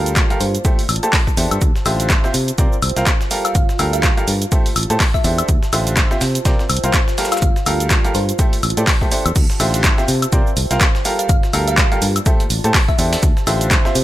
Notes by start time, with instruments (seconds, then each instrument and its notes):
Already playing: fingered electric bass D2, upright piano G3 G4 A4 A#4 F5, ambient pad F4
0.00 ambient pad A5
0.06 closed hi-hat, shaker
0.16 kick, snare, clap, closed hi-hat, shaker
0.30 upright piano G3 G4 A4 A#4 F5, closed hi-hat, shaker
0.40 fingered electric bass G2, synth pluck C5, open hi-hat, shaker
0.55 closed hi-hat, shaker
0.65 upright piano A3 G4 A4 C5 E5, kick, closed hi-hat, shaker
0.79 closed hi-hat, open hi-hat, shaker
0.89 fingered electric bass A1, open hi-hat, high woodblock, shaker
0.96 closed hi-hat
1.03 upright piano A3 G4 A4 C5 A5, closed hi-hat, shaker
1.09 ambient pad C5
1.13 kick, snare, clap, closed hi-hat, open hi-hat, shaker
1.27 kick, shaker
1.37 fingered electric bass E2, upright piano D4 G4 A4 C5 E5, open hi-hat, shaker
1.51 fingered electric bass G2, closed hi-hat, high woodblock, shaker
1.61 fingered electric bass D2, ambient pad F4, kick, closed hi-hat, shaker
1.76 snare, shaker
1.86 fingered electric bass A1, upright piano D3 F4 G4 C5 E5, snare, open hi-hat, high woodblock, shaker
2.00 closed hi-hat, shaker
2.10 kick, snare, clap, closed hi-hat, shaker
2.24 upright piano C4 F4 G4 C5 E5, snare, shaker
2.34 fingered electric bass C3, open hi-hat, shaker
2.48 closed hi-hat, shaker
2.58 fingered electric bass C3, upright piano C4 F4 A#4 C5 D5, kick, closed hi-hat, shaker
2.73 shaker
2.82 fingered electric bass C2, open hi-hat, high woodblock, shaker
2.89 closed hi-hat
2.96 fingered electric bass C2, upright piano C4 F4 A#4 C5 F5, snare, closed hi-hat, shaker
3.07 kick, snare, clap, closed hi-hat, shaker
3.21 snare, shaker
3.31 upright piano G3 G4 A4 A#4 F5, open hi-hat, shaker
3.45 synth pluck F5, closed hi-hat, high woodblock, shaker
3.55 fingered electric bass G1, synth pluck F5, kick, closed hi-hat, shaker
3.69 snare, shaker
3.79 fingered electric bass D2, upright piano G3 G4 A4 A#4 F5, open hi-hat, high woodblock, shaker
3.86 ambient pad A5
3.93 synth pluck F5, closed hi-hat, shaker
4.03 kick, snare, clap, closed hi-hat, shaker
4.17 upright piano G3 G4 A4 A#4 F5, closed hi-hat, shaker
4.28 fingered electric bass G2, open hi-hat, shaker
4.42 closed hi-hat, shaker
4.52 upright piano A3 G4 A4 C5 E5, kick, closed hi-hat, shaker
4.66 closed hi-hat, open hi-hat, shaker
4.76 fingered electric bass A1, open hi-hat, high woodblock, shaker
4.83 closed hi-hat
4.90 fingered electric bass A2, upright piano A3 G4 A4 C5 A5, closed hi-hat, shaker
4.96 ambient pad C5
5.00 kick, snare, clap, closed hi-hat, open hi-hat, shaker
5.14 synth pluck E5, kick, shaker
5.24 fingered electric bass E2, upright piano D4 G4 A4 C5 E5, synth pluck E5, open hi-hat, shaker
5.38 closed hi-hat, high woodblock, shaker
5.48 fingered electric bass D2, ambient pad F4, kick, closed hi-hat, shaker
5.63 snare, shaker
5.73 fingered electric bass A1, upright piano D3 F4 G4 C5 E5, snare, open hi-hat, high woodblock, shaker
5.87 closed hi-hat, shaker
5.97 kick, snare, clap, closed hi-hat, shaker
6.11 upright piano C4 F4 G4 C5 E5, snare, shaker
6.21 fingered electric bass C3, snare, open hi-hat, shaker
6.35 closed hi-hat, shaker
6.45 fingered electric bass C3, upright piano C4 F4 A#4 C5 D5, kick, snare, closed hi-hat, shaker
6.59 snare, shaker
6.70 fingered electric bass C2, open hi-hat, high woodblock, shaker
6.77 closed hi-hat
6.84 fingered electric bass C2, upright piano C4 F4 A#4 C5 F5, closed hi-hat, shaker
6.94 kick, snare, clap, closed hi-hat, shaker
7.08 snare, shaker
7.18 upright piano G3 G4 A4 A#4 F5, snare, open hi-hat, shaker
7.25 snare, shaker
7.32 synth pluck F5, snare, closed hi-hat, high woodblock, shaker
7.37 snare, shaker
7.42 fingered electric bass G1, synth pluck F5, kick, closed hi-hat, shaker
7.56 snare, shaker
7.66 fingered electric bass D2, upright piano G3 G4 A4 A#4 F5, open hi-hat, high woodblock, shaker
7.73 ambient pad A5
7.80 closed hi-hat, shaker
7.90 kick, snare, clap, closed hi-hat, shaker
8.05 upright piano G3 G4 A4 A#4 F5, closed hi-hat, shaker
8.15 fingered electric bass G2, synth pluck C5, open hi-hat, shaker
8.29 closed hi-hat, shaker
8.39 upright piano A3 G4 A4 C5 E5, kick, closed hi-hat, shaker
8.53 closed hi-hat, open hi-hat, shaker
8.63 fingered electric bass A1, open hi-hat, high woodblock, shaker
8.70 closed hi-hat
8.77 fingered electric bass A2, upright piano A3 G4 A4 C5 D5, closed hi-hat, shaker
8.83 ambient pad C5, snare, open hi-hat
8.87 kick, clap, closed hi-hat, shaker
9.01 upright piano A3 G4 A4 C5 E5, kick, shaker
9.11 upright piano D4 G4 A4 C5 E5, open hi-hat, shaker
9.26 fingered electric bass E2, closed hi-hat, high woodblock, shaker
9.36 fingered electric bass D2, ambient pad F4, kick, closed hi-hat, crash, shaker
9.50 snare, shaker
9.60 fingered electric bass A1, upright piano D3 F4 G4 C5 E5, snare, open hi-hat, high woodblock, shaker
9.74 closed hi-hat, shaker
9.84 kick, snare, clap, closed hi-hat, shaker
9.98 upright piano C4 F4 G4 C5 E5, snare, shaker
10.08 fingered electric bass C3, open hi-hat, shaker
10.22 closed hi-hat, high woodblock, shaker
10.32 fingered electric bass C3, upright piano C4 F4 A#4 C5 D5, kick, closed hi-hat, shaker
10.47 shaker
10.57 fingered electric bass C2, open hi-hat, shaker
10.71 fingered electric bass C2, upright piano C4 F4 A#4 C5 F5, snare, closed hi-hat, shaker
10.81 kick, snare, clap, closed hi-hat, shaker
10.95 snare, shaker
11.05 upright piano G3 G4 A4 A#4 F5, open hi-hat, shaker
11.19 synth pluck F5, closed hi-hat, shaker
11.29 fingered electric bass G1, synth pluck F5, kick, closed hi-hat, shaker
11.43 snare, shaker
11.53 fingered electric bass D2, upright piano G3 G4 A4 A#4 F5, open hi-hat, high woodblock, shaker
11.61 ambient pad A5
11.68 synth pluck F5, closed hi-hat, shaker
11.78 kick, snare, clap, closed hi-hat, shaker
11.92 upright piano G3 G4 A4 A#4 F5, closed hi-hat, shaker
12.02 fingered electric bass G2, open hi-hat, shaker
12.16 closed hi-hat, high woodblock, shaker
12.26 upright piano A3 G4 A4 C5 E5, kick, closed hi-hat, shaker
12.40 closed hi-hat, shaker
12.50 fingered electric bass A1, open hi-hat, shaker
12.64 fingered electric bass A2, upright piano A3 G4 A4 C5 A5, ambient pad C5, closed hi-hat, shaker
12.74 kick, snare, clap, closed hi-hat, open hi-hat, shaker
12.88 synth pluck E5, kick, shaker
12.99 fingered electric bass E2, upright piano D4 G4 A4 C5 E5, synth pluck E5, open hi-hat, shaker
13.13 snare, closed hi-hat, open hi-hat, shaker
13.23 fingered electric bass D2, ambient pad F4, kick, closed hi-hat, shaker
13.37 snare, shaker
13.47 fingered electric bass A1, upright piano D3 F4 G4 C5 E5, snare, open hi-hat, high woodblock, shaker
13.61 closed hi-hat, shaker
13.71 kick, snare, clap, closed hi-hat, shaker
13.85 upright piano C4 F4 G4 C5 E5, snare, shaker
13.95 fingered electric bass C3, open hi-hat, shaker